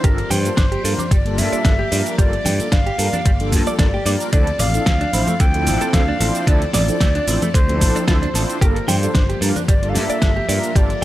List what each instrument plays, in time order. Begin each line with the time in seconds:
Already playing: string machine F3
0.04 picked electric bass G1, analog polysynth G3 A#3 D4 F4 A4, string machine A#3 G4 D5, clean electric guitar G4, flute A#4, kick, closed hi-hat, cabasa
0.18 closed hi-hat
0.30 picked electric bass G2, flute C5, clean electric guitar G5, open hi-hat, low conga, cabasa
0.45 analog polysynth G3 A#3 D4 F4 A4, closed hi-hat, cabasa
0.57 picked electric bass G1, clean electric guitar D4, kick, snare, closed hi-hat, cabasa
0.72 clean electric guitar G4, closed hi-hat
0.84 picked electric bass G2, analog polysynth G3 A#3 D4 F4 A#4, clean electric guitar A4, open hi-hat, cabasa
0.98 clean electric guitar D4, closed hi-hat, low conga, cabasa
1.11 picked electric bass G1, clean electric guitar G3, flute D5, kick, closed hi-hat, cabasa
1.25 analog polysynth G3 A#3 D4 F4 A4, closed hi-hat
1.38 picked electric bass G2, flute E5, open hi-hat, high conga, cabasa
1.52 clean electric guitar D5, muted picked electric bass stroke, closed hi-hat, cabasa
1.64 picked electric bass G1, analog polysynth G3 A#3 D4 F4 A4, clean electric guitar D4, kick, snare, closed hi-hat, cabasa
1.79 clean electric guitar G4, high conga
1.91 picked electric bass G2, analog polysynth G3 A#3 D4 F4 A#4, clean electric guitar D5, open hi-hat, cabasa
2.06 closed hi-hat, cabasa
2.18 picked electric bass G1, analog polysynth G3 A#3 D4 F4 A4, clean electric guitar G4, flute D5, kick, closed hi-hat, cabasa
2.33 closed hi-hat
2.45 picked electric bass G2, clean electric guitar G5, open hi-hat, low conga, cabasa
2.59 analog polysynth G3 A#3 D4 F4 A4, muted picked electric bass stroke, closed hi-hat, cabasa
2.72 picked electric bass G1, clean electric guitar D4, flute F5, kick, snare, closed hi-hat, cabasa
2.86 clean electric guitar G4, closed hi-hat
2.98 picked electric bass G2, analog polysynth G3 A#3 D4 F4 A#4, clean electric guitar A4, open hi-hat, cabasa
3.13 clean electric guitar D4, closed hi-hat, low conga, cabasa
3.25 picked electric bass G1, clean electric guitar G3, kick, closed hi-hat, cabasa
3.40 analog polysynth G3 A#3 D4 F4 A4, closed hi-hat
3.52 picked electric bass G2, kick, open hi-hat, high conga, cabasa
3.66 clean electric guitar D5, muted picked electric bass stroke, closed hi-hat, cabasa
3.79 picked electric bass G1, analog polysynth G3 A#3 D4 F4 A4, clean electric guitar D4, flute D5, kick, snare, closed hi-hat, cabasa
3.94 clean electric guitar G4, high conga
4.05 picked electric bass G2, analog polysynth G3 A#3 D4 F4 A#4, clean electric guitar D5, open hi-hat, cabasa
4.20 closed hi-hat, cabasa
4.33 picked electric bass D2, analog polysynth F3 C4 D4 E4 A4, string machine F3 C4 A4, clean electric guitar D4, flute D5, kick, closed hi-hat, cabasa
4.47 closed hi-hat
4.59 picked electric bass A1, clean electric guitar D5, flute F5, open hi-hat, low conga, cabasa
4.74 analog polysynth F3 C4 D4 E4 A4, closed hi-hat, cabasa
4.86 picked electric bass D2, clean electric guitar A3, kick, snare, closed hi-hat, cabasa
5.01 clean electric guitar D4, closed hi-hat
5.13 picked electric bass A1, analog polysynth F3 C4 D4 E4 C5, clean electric guitar E4, open hi-hat, cabasa
5.27 clean electric guitar A3, closed hi-hat, low conga, cabasa
5.40 picked electric bass D2, clean electric guitar D3, flute G5, kick, closed hi-hat, cabasa
5.54 analog polysynth F3 C4 D4 E4 A4, closed hi-hat
5.67 picked electric bass A1, open hi-hat, high conga, cabasa
5.81 clean electric guitar A4, muted picked electric bass stroke, closed hi-hat, cabasa
5.93 picked electric bass D2, analog polysynth F3 C4 D4 E4 A4, clean electric guitar A3, flute F5, kick, snare, closed hi-hat, cabasa
6.08 clean electric guitar D4, high conga
6.20 picked electric bass A1, analog polysynth F3 C4 D4 E4 C5, clean electric guitar A4, open hi-hat, cabasa
6.35 closed hi-hat, cabasa
6.47 picked electric bass D2, analog polysynth F3 C4 D4 E4 A4, clean electric guitar D4, flute D5, kick, closed hi-hat, cabasa
6.62 closed hi-hat
6.73 picked electric bass A1, flute D5, clean electric guitar D5, snare, open hi-hat, low conga, cabasa
6.88 analog polysynth F3 C4 D4 E4 A4, muted picked electric bass stroke, closed hi-hat, cabasa
7.01 picked electric bass D2, clean electric guitar A3, kick, snare, closed hi-hat, cabasa
7.15 clean electric guitar D4, closed hi-hat
7.27 picked electric bass A1, analog polysynth F3 C4 D4 E4 C5, clean electric guitar E4, open hi-hat, cabasa
7.42 clean electric guitar A3, closed hi-hat, low conga, cabasa
7.54 picked electric bass D2, clean electric guitar D3, flute C5, kick, closed hi-hat, cabasa
7.68 analog polysynth F3 C4 D4 E4 A4, closed hi-hat, high conga
7.81 picked electric bass A1, kick, open hi-hat, high conga, cabasa
7.95 clean electric guitar D4, muted picked electric bass stroke, closed hi-hat, cabasa
8.08 picked electric bass D2, analog polysynth F3 C4 D4 E4 A4, clean electric guitar F4, flute C5, kick, snare, closed hi-hat, cabasa
8.22 clean electric guitar D4, closed hi-hat, high conga
8.34 picked electric bass A1, analog polysynth F3 C4 D4 E4 C5, clean electric guitar A4, open hi-hat, cabasa
8.50 closed hi-hat, cabasa
8.61 picked electric bass G1, analog polysynth G3 A#3 D4 F4 A4, string machine A#3 G4, clean electric guitar G4, flute A#4, kick, closed hi-hat, cabasa
8.76 closed hi-hat
8.88 picked electric bass G2, flute C5, clean electric guitar G5, open hi-hat, low conga, cabasa
9.02 analog polysynth G3 A#3 D4 F4 A4, closed hi-hat, cabasa
9.15 picked electric bass G1, clean electric guitar D4, kick, snare, closed hi-hat, cabasa
9.29 clean electric guitar G4, closed hi-hat
9.41 picked electric bass G2, analog polysynth G3 A#3 D4 F4 A#4, clean electric guitar A4, open hi-hat, cabasa
9.56 clean electric guitar D4, closed hi-hat, low conga, cabasa
9.68 picked electric bass G1, clean electric guitar G3, flute D5, kick, closed hi-hat, cabasa
9.82 analog polysynth G3 A#3 D4 F4 A4, closed hi-hat
9.89 flute F5
9.95 picked electric bass G2, flute E5, open hi-hat, high conga, cabasa
10.09 clean electric guitar D5, muted picked electric bass stroke, closed hi-hat, cabasa
10.21 picked electric bass G1, analog polysynth G3 A#3 D4 F4 A4, clean electric guitar D4, kick, snare, closed hi-hat, cabasa
10.36 clean electric guitar G4, high conga
10.48 picked electric bass G2, analog polysynth G3 A#3 D4 F4 A#4, clean electric guitar D5, open hi-hat, cabasa
10.63 closed hi-hat, cabasa
10.75 picked electric bass G1, analog polysynth G3 A#3 D4 F4 A4, clean electric guitar G4, flute D5, string machine E6, kick, closed hi-hat, cabasa
10.90 closed hi-hat